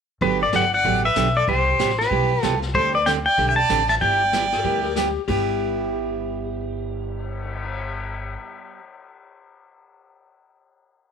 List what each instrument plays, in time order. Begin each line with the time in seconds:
0.21 upright bass G1, steel-string acoustic guitar D3 F#3 B3 D4 G4, fiddle G4, pedal steel guitar B4, brush sweep, kick
0.42 fiddle A4, pedal steel guitar D5
0.53 upright bass G1, steel-string acoustic guitar D3 F#3 B3 D4 G4, fiddle D5, pedal steel guitar F#5, snare, hi-hat pedal
0.74 fiddle D5, pedal steel guitar F#5
0.84 upright bass A1, steel-string acoustic guitar D3 F#3 B3 D4 G4, brush sweep, kick
1.05 fiddle B4, pedal steel guitar E5
1.16 upright bass B1, steel-string acoustic guitar D3 F#3 B3 D4 G4, snare, hi-hat pedal
1.37 fiddle A4, pedal steel guitar D5
1.47 upright bass C2, steel-string acoustic guitar C3 G3 B3 E4 G4, fiddle G4, pedal steel guitar C5, brush sweep, kick
1.79 upright bass A1, steel-string acoustic guitar C3 G3 B3 E4 G4, snare, hi-hat pedal
1.90 snare
1.99 fiddle G4, pedal steel guitar B4, snare
2.11 upright bass B1, steel-string acoustic guitar C3 G3 B3 E4 G4, brush sweep, kick
2.43 upright bass C2, steel-string acoustic guitar C3 G3 B3 E4 G4, fiddle F4, pedal steel guitar A4, snare, hi-hat pedal
2.62 snare
2.74 upright bass D2, steel-string acoustic guitar D3 G3 C4 D4 G4, fiddle A4, pedal steel guitar C5, brush sweep, kick
2.94 fiddle B4, pedal steel guitar D5
3.06 steel-string acoustic guitar D3 G3 C4 D4 G4, fiddle D5, pedal steel guitar G5, snare, hi-hat pedal
3.26 fiddle D5, pedal steel guitar G5
3.38 upright bass B1, steel-string acoustic guitar D3 G3 C4 D4 G4, brush sweep, kick
3.49 fiddle E5, pedal steel guitar G5
3.56 fiddle D5, pedal steel guitar A5
3.69 upright bass A1, steel-string acoustic guitar D3 G3 C4 D4 G4, snare, hi-hat pedal
3.89 fiddle E5, pedal steel guitar A5, snare
4.01 upright bass G1, steel-string acoustic guitar G3 B3 E4 G4, fiddle D5, pedal steel guitar G5, brush sweep, kick
4.33 steel-string acoustic guitar G3 B3 E4 G4, snare, hi-hat pedal
4.52 electric slide guitar G4 A#4, snare
4.63 upright bass D2, steel-string acoustic guitar G3 B3 E4 G4, electric slide guitar G4 A#4, brush sweep, kick
4.83 electric slide guitar G4 A#4
4.96 steel-string acoustic guitar G3 B3 E4 G4, electric slide guitar G4, snare, hi-hat pedal
5.28 upright bass G1, steel-string acoustic guitar G3 B3 E4 G4, electric slide guitar G4, kick, crash
5.48 cymbal swell